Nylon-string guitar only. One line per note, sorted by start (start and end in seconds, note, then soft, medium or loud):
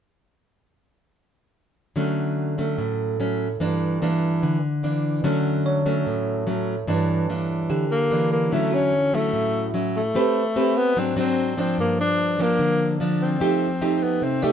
1.96 2.76 D3 medium
1.96 2.54 F#3 medium
1.96 2.55 A3 medium
1.96 2.55 C#4 medium
2.58 3.16 F#3 soft
2.58 3.16 A3 medium
2.58 3.16 C#4 medium
2.78 3.58 A2 medium
3.20 3.47 F#3 soft
3.20 3.47 A3 soft
3.20 3.47 C#4 medium
3.60 4.40 G2 medium
3.60 3.98 E3 soft
3.60 3.98 A#3 medium
3.60 3.99 D4 medium
4.02 4.57 E3 medium
4.02 4.57 A#3 medium
4.02 4.57 D4 medium
4.43 5.22 D3 medium
4.83 5.21 E3 soft
4.83 5.21 A#3 medium
4.83 5.21 D4 medium
5.24 6.04 D3 medium
5.24 5.82 F#3 medium
5.24 5.82 A3 medium
5.24 5.82 C#4 medium
5.86 6.44 F#3 soft
5.86 6.44 A3 medium
5.86 6.44 C#4 medium
6.06 6.86 A2 medium
6.47 6.74 F#3 soft
6.47 6.75 A3 soft
6.47 6.75 C#4 soft
6.87 7.67 G2 medium
6.87 7.25 E3 soft
6.87 7.26 A#3 soft
6.87 7.26 D4 medium
7.29 7.84 E3 soft
7.29 7.84 A#3 medium
7.29 7.84 D4 medium
7.70 8.49 D3 medium
8.11 8.48 E3 medium
8.11 8.48 A#3 soft
8.11 8.49 D4 soft
8.52 9.31 D3 soft
8.52 8.92 F#3 medium
8.52 8.93 C#4 medium
8.52 8.93 E4 medium
9.13 9.71 F#3 medium
9.13 9.71 C#4 soft
9.13 9.71 E4 medium
9.33 10.12 A2 medium
9.74 10.00 F#3 medium
9.74 10.00 C#4 soft
9.74 10.00 E4 medium
10.15 10.94 A3 medium
10.15 10.41 C4 soft
10.15 10.41 G4 medium
10.15 10.41 B4 medium
10.56 10.95 C4 medium
10.56 10.95 G4 medium
10.56 10.95 B4 medium
10.96 11.76 G#2 medium
10.96 11.13 F#3 medium
10.96 11.13 C4 soft
10.96 11.14 D4 medium
11.17 11.54 F#3 medium
11.17 11.54 C4 soft
11.17 11.54 D4 medium
11.57 12.35 F3 medium
11.57 12.35 A#3 medium
11.57 12.36 D4 medium
11.78 12.57 G2 soft
12.39 12.96 F3 medium
12.39 12.97 A#3 medium
12.39 12.97 D4 medium
12.59 13.38 D3 medium
13.00 13.37 F3 medium
13.00 13.37 A#3 medium
13.00 13.38 D4 soft
13.40 14.20 F3 medium
13.40 13.66 A3 medium
13.40 13.67 D#4 soft
13.40 13.67 G4 medium
13.81 14.39 A3 medium
13.81 14.39 D#4 soft
13.81 14.39 G4 medium
14.22 14.52 C3 soft
14.43 14.52 A3 medium
14.43 14.52 D#4 medium
14.43 14.52 G4 medium